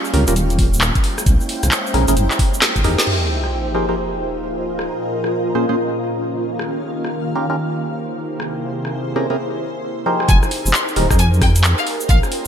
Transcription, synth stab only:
0.14 0.25 C#4 medium
0.14 0.25 F4 medium
0.14 0.25 G4 medium
0.14 0.25 A#4 medium
0.28 0.34 C#4 medium
0.28 0.34 F4 medium
0.28 0.34 G4 medium
0.28 0.34 A#4 medium
1.94 2.05 C#4 medium
1.94 2.05 E4 medium
1.94 2.05 G#4 medium
1.94 2.05 A#4 medium
2.08 2.15 C#4 medium
2.08 2.15 E4 medium
2.08 2.15 G#4 medium
2.08 2.15 A#4 medium
2.84 3.29 D#4 loud
2.84 3.29 G4 medium
2.84 3.29 G#4 medium
2.84 3.29 A#4 loud
3.75 3.86 F3 medium
3.75 3.86 D#4 medium
3.75 3.86 G4 medium
3.75 3.86 G#4 medium
3.75 3.86 A#4 medium
3.75 3.86 C5 medium
3.89 3.95 F3 medium
3.89 3.95 D#4 medium
3.89 3.95 G4 medium
3.89 3.95 G#4 medium
3.89 3.95 A#4 medium
3.89 3.95 C5 medium
5.55 5.66 A#2 medium
5.55 5.66 C#4 medium
5.55 5.66 F4 medium
5.55 5.66 G#4 medium
5.55 5.66 C5 medium
5.69 5.76 A#2 medium
5.69 5.76 C#4 medium
5.69 5.76 F4 medium
5.69 5.76 G#4 medium
5.69 5.76 C5 medium
7.36 7.47 D#3 medium
7.36 7.47 C#4 medium
7.36 7.47 F4 medium
7.36 7.47 G4 medium
7.36 7.47 A#4 medium
7.50 7.56 D#3 medium
7.50 7.56 C#4 medium
7.50 7.56 F4 medium
7.50 7.56 G4 medium
7.50 7.56 A#4 medium
9.16 9.27 C3 medium
9.16 9.27 C#4 medium
9.16 9.27 E4 medium
9.16 9.27 G4 medium
9.16 9.27 G#4 medium
9.16 9.27 A#4 medium
9.30 9.37 C3 medium
9.30 9.37 C#4 medium
9.30 9.37 E4 medium
9.30 9.37 G4 medium
9.30 9.37 G#4 medium
9.30 9.37 A#4 medium
10.06 10.51 F3 loud
10.06 10.51 D#4 medium
10.06 10.51 G4 medium
10.06 10.51 G#4 medium
10.06 10.51 A#4 medium
10.06 10.51 C5 loud
10.96 11.07 D#4 medium
10.96 11.07 G4 medium
10.96 11.07 G#4 medium
10.96 11.07 A#4 medium
11.10 11.17 D#4 medium
11.10 11.17 G4 medium
11.10 11.17 G#4 medium
11.10 11.17 A#4 medium

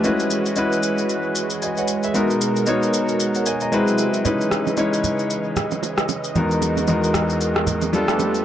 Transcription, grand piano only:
0.04 0.48 G#3 medium
0.04 0.48 C#4 medium
0.04 0.48 E4 medium
0.04 0.48 F#4 medium
0.04 0.48 B4 medium
0.56 1.41 G#3 medium
0.56 1.42 C#4 medium
0.56 1.42 E4 medium
0.56 1.42 F#4 medium
0.56 1.42 B4 medium
1.62 1.77 D#5 medium
1.62 1.77 G#5 medium
1.78 2.03 C#5 medium
1.78 2.02 F#5 medium
2.04 2.29 B4 medium
2.04 2.29 E5 medium
2.14 2.58 G#3 medium
2.14 2.58 B3 medium
2.14 2.58 D#4 medium
2.14 2.59 F#4 medium
2.14 2.59 A#4 medium
2.67 3.52 G#3 medium
2.67 3.52 B3 medium
2.67 3.52 D#4 medium
2.67 3.52 F#4 medium
2.67 3.20 C#5 medium
3.36 3.46 C#5 medium
3.36 3.46 F#5 medium
3.46 3.61 D#5 medium
3.46 3.61 G#5 medium
3.62 3.87 D#5 medium
3.62 3.86 A#5 medium
3.72 4.16 G#3 medium
3.72 4.16 C4 medium
3.72 4.16 E4 medium
3.72 4.16 F#4 medium
3.72 4.17 B4 loud
4.25 4.68 G#3 medium
4.25 4.69 C#4 medium
4.25 4.69 D#4 medium
4.25 4.69 E4 medium
4.25 4.69 B4 medium
4.77 5.62 G#3 medium
4.77 5.62 C#4 medium
4.77 5.63 D#4 medium
4.77 5.63 E4 medium
4.77 5.63 C#5 medium
6.35 6.79 E2 medium
6.35 6.79 G#3 medium
6.35 6.79 B3 medium
6.35 6.80 D#4 medium
6.35 6.80 F#4 medium
6.35 6.80 A#4 medium
6.88 7.73 E2 medium
6.88 7.73 G#3 medium
6.88 7.73 B3 medium
6.88 7.73 D#4 medium
6.88 7.74 F#4 medium
6.88 7.74 A#4 medium
7.93 8.37 G3 medium
7.93 8.37 B3 medium
7.93 8.37 D4 medium
7.93 8.37 F4 medium
7.93 8.38 A4 loud

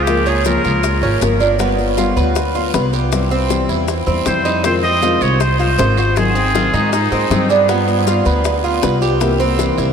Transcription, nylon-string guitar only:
0.07 0.25 C#3 medium
0.07 0.26 F3 medium
0.07 0.26 A#3 medium
0.07 0.25 F4 medium
0.07 0.24 A#4 medium
0.26 0.44 A#3 soft
0.26 0.45 F4 soft
0.26 0.44 A#4 medium
0.45 0.82 C#3 medium
0.45 0.82 F3 medium
0.45 0.82 A#3 medium
0.45 0.82 F4 medium
0.45 0.83 A#4 medium
0.83 muted nylon-string guitar stroke soft
1.01 1.20 A#3 soft
1.01 1.21 F4 soft
1.01 1.20 A#4 soft
1.20 1.39 C#3 medium
1.20 1.40 F3 medium
1.20 1.40 A#3 medium
1.20 1.40 F4 medium
1.20 1.38 A#4 medium
1.40 1.58 A#3 soft
1.40 1.59 F4 soft
1.40 1.58 A#4 medium
1.58 1.77 G3 medium
1.58 1.78 B3 medium
1.58 1.77 F4 medium
1.78 1.97 B3 soft
1.78 1.97 F4 soft
1.97 2.34 G3 medium
1.97 2.35 B3 medium
1.97 2.35 F4 medium
2.36 muted nylon-string guitar stroke medium
2.55 2.73 B3 soft
2.55 2.73 F4 soft
2.73 2.92 G3 medium
2.73 2.92 B3 medium
2.73 2.92 F4 medium
2.93 3.12 B3 soft
2.93 3.11 F4 soft
3.12 3.30 C3 medium
3.12 3.31 E3 medium
3.12 3.31 G3 medium
3.12 3.30 C4 medium
3.12 3.29 E4 medium
3.30 3.50 G3 soft
3.30 3.50 C4 soft
3.30 3.49 E4 soft
3.50 3.87 C3 medium
3.50 3.87 E3 medium
3.50 3.87 G3 medium
3.50 3.88 C4 medium
3.50 3.88 E4 medium
3.88 muted nylon-string guitar stroke medium
4.07 4.26 G3 soft
4.07 4.26 C4 soft
4.07 4.26 E4 medium
4.27 4.45 C3 medium
4.27 4.45 E3 medium
4.27 4.45 G3 medium
4.27 4.45 C4 medium
4.27 4.44 E4 medium
4.45 4.65 G3 soft
4.45 4.64 C4 soft
4.45 4.64 E4 medium
4.64 4.82 C3 medium
4.64 4.83 D#3 medium
4.64 4.83 G#3 medium
4.64 4.83 C4 medium
4.64 4.82 F4 medium
4.83 5.02 G#3 soft
4.83 5.02 C4 soft
4.83 5.02 F4 soft
5.02 5.39 C3 medium
5.02 5.39 D#3 medium
5.02 5.40 G#3 medium
5.02 5.40 C4 medium
5.02 5.40 F4 medium
5.40 muted nylon-string guitar stroke medium
5.59 5.78 G#3 soft
5.59 5.78 C4 soft
5.59 5.78 F4 soft
5.78 5.97 C3 medium
5.78 5.97 D#3 medium
5.78 5.97 G#3 medium
5.78 5.97 C4 medium
5.78 5.96 F4 medium
5.97 6.17 G#3 soft
5.97 6.16 C4 soft
5.97 6.16 F4 soft
6.16 6.35 D#3 medium
6.16 6.35 F#3 medium
6.16 6.35 C4 medium
6.16 6.35 D#4 medium
6.16 6.34 G#4 medium
6.36 6.54 C4 soft
6.36 6.54 D#4 soft
6.54 6.92 D#3 medium
6.54 6.92 F#3 medium
6.54 6.92 C4 medium
6.54 6.92 D#4 medium
6.54 6.92 G#4 medium
6.93 muted nylon-string guitar stroke medium
7.11 7.30 C4 soft
7.11 7.30 D#4 soft
7.11 7.30 G#4 soft
7.30 7.49 D#3 medium
7.30 7.49 F#3 medium
7.30 7.49 C4 medium
7.30 7.49 D#4 medium
7.30 7.48 G#4 medium
7.49 7.68 C4 soft
7.49 7.68 D#4 soft
7.49 7.68 G#4 soft
7.68 7.87 G3 medium
7.68 7.87 B3 medium
7.68 7.86 F4 medium
7.87 8.06 B3 soft
7.87 8.06 F4 medium
8.06 8.43 G3 medium
8.06 8.44 B3 medium
8.06 8.44 F4 medium
8.44 muted nylon-string guitar stroke medium
8.63 8.81 B3 soft
8.63 8.81 F4 medium
8.81 9.00 G3 medium
8.81 9.01 B3 medium
8.81 9.00 F4 medium
9.01 9.21 B3 soft
9.01 9.20 F4 medium
9.19 9.38 C3 medium
9.19 9.39 E3 medium
9.19 9.39 A#3 medium
9.19 9.39 C4 medium
9.19 9.38 E4 medium
9.39 9.58 A#3 soft
9.39 9.58 C4 soft
9.39 9.58 E4 soft
9.58 9.93 C3 medium
9.58 9.93 E3 medium
9.58 9.93 A#3 medium
9.58 9.93 C4 medium
9.58 9.93 E4 medium

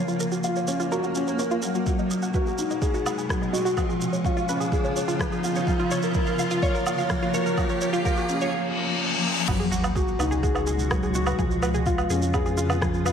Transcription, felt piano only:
0.00 0.19 F3 medium
0.44 0.57 F4 medium
0.68 0.90 C#4 medium
0.91 1.14 F#4 loud
1.15 1.38 C#4 medium
1.39 1.61 A#4 medium
1.63 1.86 F#3 medium
1.87 2.09 F#3 medium
2.34 2.48 F#4 medium
2.58 2.81 D#4 medium
2.82 3.05 G#4 loud
3.29 3.52 F#3 medium
3.53 3.76 F#4 medium
3.77 4.00 F3 medium
4.26 4.39 F4 medium
4.49 4.72 C#4 medium
4.73 4.95 G#4 loud
5.21 5.43 F3 medium
5.44 5.66 F4 loud
5.68 5.90 F3 medium
6.15 6.29 A#4 loud
6.39 6.62 F4 medium
6.63 6.85 C#5 loud
7.11 7.33 F3 medium
7.34 7.57 A#4 loud
7.58 7.81 F3 medium
8.05 8.19 F4 loud
8.29 8.52 C#4 medium
9.48 9.71 F#3 medium
9.96 10.10 F#4 loud
10.20 10.42 D#4 medium
10.43 10.66 G#4 loud
10.91 11.14 F#3 medium
11.15 11.38 F#4 loud
11.39 11.61 F3 medium
11.87 12.00 F4 loud
12.11 12.33 C#4 medium
12.34 12.57 G#4 loud
12.82 13.05 F3 medium
13.06 13.12 F4 loud

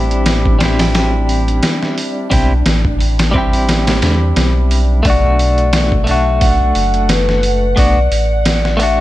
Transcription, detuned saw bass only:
0.00 1.61 A1 medium
2.32 2.62 B1 loud
2.66 4.02 A1 medium
4.03 4.33 E2 medium
4.37 5.02 B1 medium
5.05 6.73 B1 loud
6.76 7.75 F#1 medium
7.77 8.08 B1 loud
8.12 9.01 A1 medium

